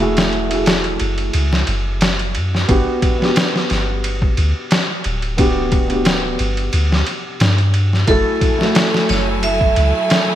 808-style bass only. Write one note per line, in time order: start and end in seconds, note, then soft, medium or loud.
0.00 0.98 E1 loud
1.01 1.31 F#1 medium
1.34 1.64 C#2 medium
1.68 2.38 F#1 medium
2.36 2.66 F#2 medium
2.69 2.85 G1 loud
3.71 4.35 G1 medium
4.38 4.54 D2 loud
5.06 6.37 D1 loud
6.40 6.70 G1 medium
6.74 7.03 D2 medium
7.41 8.05 G2 loud
8.08 8.24 F#1 loud
9.10 9.74 F#1 medium
9.77 9.93 C#2 loud